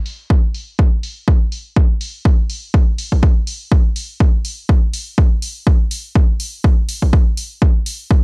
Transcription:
0.06 open hi-hat
0.30 kick
0.54 open hi-hat
0.79 kick
1.03 open hi-hat
1.28 kick
1.52 open hi-hat
1.76 kick
2.01 open hi-hat
2.25 kick
2.50 open hi-hat
2.74 kick
2.98 open hi-hat
3.12 kick
3.23 kick
3.47 open hi-hat
3.72 kick
3.96 open hi-hat
4.20 kick
4.45 open hi-hat
4.69 kick
4.93 open hi-hat
5.18 kick
5.42 open hi-hat
5.67 kick
5.91 open hi-hat
6.15 kick
6.40 open hi-hat
6.64 kick
6.89 open hi-hat
7.02 kick
7.13 kick
7.37 open hi-hat
7.62 kick
7.86 open hi-hat
8.11 kick

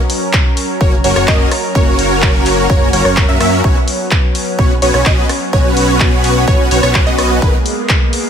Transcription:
Already playing: F#3 C#4 A#4
0.10 open hi-hat
0.33 kick, clap
0.57 open hi-hat
0.81 F#1 A#3 C#4 F#4 A#4 C#5, kick
1.04 F#1 A#3 C#4 F#4 A#4 C#5, open hi-hat
1.16 F#1 A#3 C#4 F#4 A#4 C#5, cross-stick
1.28 F#1 A#3 C#4 F#4 A#4 D#5, kick, clap
1.51 cross-stick, open hi-hat
1.75 F#1 A#3 C#4 F#4 A#4 C#5, kick
1.99 open hi-hat
2.22 kick, clap
2.46 clap, open hi-hat
2.69 F#1 A#3 C#4 F#4 A#4 C#5, kick
2.93 F#1 A#3 C#4 F#4 A#4 C#5, open hi-hat
3.05 F#1 A#3 C#4 F#4 A#4 C#5, cross-stick
3.17 kick, clap
3.29 F#2 A#3 C#4 F#4 A#4 E5
3.40 F#2 A#3 C#4 F#4 A#4 E5, cross-stick, open hi-hat
3.64 B1 B3 C#4 F#4 B4 C#5, kick
3.88 open hi-hat
4.11 kick, clap
4.35 open hi-hat
4.58 B1 B3 C#4 F#4 B4 C#5, kick
4.82 B1 B3 C#4 F#4 B4 C#5, open hi-hat
4.94 B1 B3 C#4 F#4 B4 C#5, cross-stick
5.05 B1 B3 C#4 F#4 B4 D#5, kick, clap
5.29 cross-stick, open hi-hat
5.53 B1 B3 C#4 F#4 B4 C#5, kick
5.77 open hi-hat
6.00 kick, clap
6.24 clap, open hi-hat
6.47 B1 B3 C#4 F#4 B4 C#5, kick
6.71 B1 B3 C#4 F#4 B4 C#5, open hi-hat
6.83 B1 B3 C#4 F#4 B4 C#5, cross-stick
6.95 kick, clap
7.07 B1 B3 C#4 F#4 B4 D#5
7.18 cross-stick, open hi-hat
7.42 G#1 G#3 A#3 B3 D#4 G#4 A#4 B4, kick
7.66 open hi-hat
7.89 kick, clap
8.13 open hi-hat

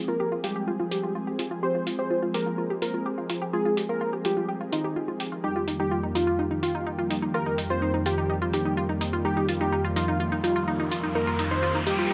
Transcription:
Already playing: F3 G#3 C4 G#4
0.08 F4 A#4
0.20 G4
0.32 F4
0.44 F4 G4, open hi-hat
0.56 G4
0.68 F4
0.80 F4
0.91 G4, open hi-hat
1.03 F4
1.15 F4
1.27 G4
1.39 F4, open hi-hat
1.51 F4
1.63 G4 C5
1.75 F4
1.87 F4, open hi-hat
1.99 G4 C5
2.10 F4
2.22 F4
2.34 G4 A#4, open hi-hat
2.46 F4
2.58 F4
2.70 G4
2.82 F4 A#4, open hi-hat
2.94 F4
3.06 G4
3.18 F4
3.30 F4, open hi-hat
3.42 G4
3.53 F4 G#4
3.65 F4
3.77 G4, open hi-hat
3.89 F4 A#4
4.01 F4
4.13 G4
4.25 F4 G4, open hi-hat
4.37 F4
4.49 G4
4.61 F4
4.72 D#4 F4, open hi-hat
4.84 G4
4.96 F4
5.08 F4
5.20 G4, open hi-hat
5.32 F4
5.44 F2 D#3 G3 A#3 D#4 G4
5.56 F4
5.68 D#4, open hi-hat
5.80 D#4 G4
5.91 F4
6.03 D#4
6.15 D#4 F4, open hi-hat
6.27 F4
6.39 D#4
6.51 D#4
6.63 F4, open hi-hat
6.75 D#4
6.87 D#4
6.99 F4
7.10 D#4, open hi-hat
7.22 D#4
7.34 F4 A#4
7.46 D#4
7.58 D#4, open hi-hat
7.70 F4 C5
7.82 D#4
7.94 D#4
8.06 F4 G4, open hi-hat
8.18 D#4
8.30 D#4
8.42 F4
8.53 D#4 G4, open hi-hat
8.65 D#4
8.77 F4
8.89 D#4
9.01 D#4, open hi-hat
9.13 F4
9.25 D#4 F4 G4, riser
9.37 D#4
9.49 F4, open hi-hat
9.61 D#4 G4
9.72 D#4
9.84 F4
9.96 D#4 F4, open hi-hat
10.08 D#4
10.20 F4
10.32 D#4
10.44 D#4 F4, open hi-hat
10.56 F4
10.68 D#4
10.80 D#4
10.91 F4, open hi-hat
11.03 D#4
11.15 D#4 A#4
11.27 F4
11.39 D#4, open hi-hat
11.51 D#4 C5
11.63 F4
11.75 D#4
11.87 D#4 G4, open hi-hat
11.99 F4
12.10 D#4

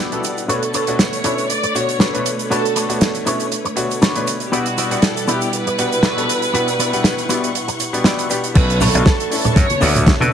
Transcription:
Already playing: B2 G3 B3 E4 D5 F#5
0.00 E4 F#4 G4 D5
0.12 B2 G3 B3 D4 A4, closed hi-hat
0.24 closed hi-hat, shaker
0.37 closed hi-hat, shaker
0.48 B2 D3 A3 D4 F#4 A4 B4 C#5, closed hi-hat, shaker
0.63 closed hi-hat
0.74 D4 A4 B4 C#5, closed hi-hat, shaker
0.87 B2 A3 D4 F#4 C#5, closed hi-hat, shaker
0.99 C#5, snare, closed hi-hat, shaker
1.13 closed hi-hat, shaker
1.24 B2 A3 C#4 D4 E4 A4 B4 C#5, closed hi-hat, shaker
1.38 closed hi-hat, shaker
1.49 D5, closed hi-hat, shaker
1.63 muted clean electric guitar stroke, closed hi-hat
1.74 B2 A3 D4 F#4 C#5, muted clean electric guitar stroke, closed hi-hat, shaker
1.89 closed hi-hat, shaker
2.00 D4 A4 B4 C#5, snare, closed hi-hat, shaker
2.13 B2 A3 D4 B4 C#5, closed hi-hat
2.26 closed hi-hat, shaker
2.39 closed hi-hat, shaker
2.50 B2 A3 D4 F#4 A4 B4 C#5, closed hi-hat, shaker
2.65 closed hi-hat
2.75 D4 A4 B4 C#5, closed hi-hat, shaker
2.89 B2 A3 D4 F#4 C#5, closed hi-hat, shaker
3.01 snare, closed hi-hat, shaker
3.15 closed hi-hat, shaker
3.25 B2 A3 C#4 D4 E4 A4 B4 C#5, closed hi-hat, shaker
3.40 closed hi-hat, shaker
3.52 closed hi-hat, shaker
3.65 muted clean electric guitar stroke, closed hi-hat
3.76 B2 A3 D4 F#4 C#5, muted clean electric guitar stroke, closed hi-hat, shaker
3.91 closed hi-hat, shaker
4.01 D4 A4 B4 C#5, snare, closed hi-hat, shaker
4.15 B2 A3 D4 B4 C#5, closed hi-hat
4.27 closed hi-hat, shaker
4.40 closed hi-hat, shaker
4.45 G4
4.52 B2 G3 B3 D4 E4 F#4 G4 D5 F#5, closed hi-hat, shaker
4.66 closed hi-hat
4.77 B3 E4 F#4 G4 D5, closed hi-hat, shaker
4.91 B2 G3 B3 D4 F#5, closed hi-hat, shaker
5.02 A4, snare, closed hi-hat, shaker
5.17 closed hi-hat, shaker
5.27 B2 G3 B3 D4 E4 F#4 G4 E5, closed hi-hat, shaker
5.41 closed hi-hat, shaker
5.53 B4, closed hi-hat, shaker
5.66 muted clean electric guitar stroke, closed hi-hat
5.78 B2 G3 B3 D4 F#5, muted clean electric guitar stroke, closed hi-hat, shaker
5.92 closed hi-hat, shaker
6.03 B3 E4 F#4 G4 A4, snare, closed hi-hat, shaker
6.17 B2 G3 B3 D4 A4, closed hi-hat
6.29 closed hi-hat, shaker
6.42 closed hi-hat, shaker
6.53 B2 G3 B3 D4 E4 F#4 G4 E5 F#5 C#6, closed hi-hat, shaker
6.68 closed hi-hat, shaker
6.79 B3 E4 F#4 G4 D5, closed hi-hat, shaker
6.93 B2 G3 B3 D4 F#5, closed hi-hat, shaker
7.04 snare, closed hi-hat, shaker
7.18 closed hi-hat, shaker
7.29 B2 G3 B3 D4 E4 F#4 G4 D5, closed hi-hat, shaker
7.44 closed hi-hat, shaker
7.55 closed hi-hat, shaker
7.68 muted clean electric guitar stroke, closed hi-hat, shaker
7.80 muted clean electric guitar stroke, closed hi-hat, shaker
7.93 B2 G3 B3 D4, closed hi-hat, shaker
8.04 B3 E4 F#4 G4 D5, snare, closed hi-hat, shaker
8.19 closed hi-hat, shaker
8.29 B2 G3 B3 D4 G4, closed hi-hat, shaker
8.44 closed hi-hat, shaker
8.54 B1 A3 C#4 D4 F#4 B4 A5 C#6, kick, closed hi-hat, crash, shaker
8.70 closed hi-hat
8.81 D4 A4 B4 C#5, open hi-hat, high conga, low conga, shaker
8.94 B1 A3 D4 F#4 C#5, closed hi-hat, shaker
9.06 kick, snare, closed hi-hat, shaker
9.20 closed hi-hat
9.30 A3 C#4 D4 E4 A4, open hi-hat, shaker
9.44 muted clean electric guitar stroke, closed hi-hat, low conga, shaker
9.56 F#2 C#5, muted clean electric guitar stroke, kick, snare, closed hi-hat, shaker
9.70 closed hi-hat, high conga
9.80 D2 A3 D4 F#4 A4 B4 D5, open hi-hat, shaker
9.95 closed hi-hat, low conga, shaker
10.07 kick, snare, closed hi-hat, shaker
10.20 B2 A3 D4 A4 B4 E5, closed hi-hat, high conga

